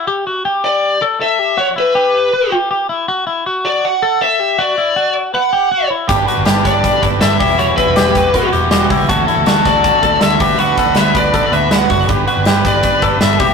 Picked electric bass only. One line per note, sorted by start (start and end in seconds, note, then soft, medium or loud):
6.09 6.24 G1 loud
6.38 6.45 G1 medium
6.47 6.62 G1 loud
6.65 6.88 G1 medium
7.03 7.18 G1 loud
7.22 7.37 G1 loud
7.41 7.71 E1 loud
7.87 7.95 E1 loud
7.97 8.12 E1 loud
8.15 8.38 E1 loud
8.53 8.68 E1 loud
8.72 8.87 E1 loud
8.91 9.06 C#2 loud
9.10 9.25 D2 loud
9.37 9.45 D2 medium
9.47 9.62 D2 loud
9.66 9.89 D2 loud
10.03 10.18 D2 loud
10.22 10.37 D2 loud
10.40 10.71 D2 loud
10.87 10.95 D2 medium
10.96 11.12 D2 medium
11.15 11.38 D2 loud
11.52 11.68 D2 loud
11.71 11.86 D2 loud
11.90 12.05 F#1 medium
12.09 12.24 G1 loud
12.37 12.45 G1 medium
12.46 12.61 G1 loud
12.65 12.88 G1 medium
13.02 13.18 G1 loud
13.21 13.37 G1 loud
13.40 13.54 E1 loud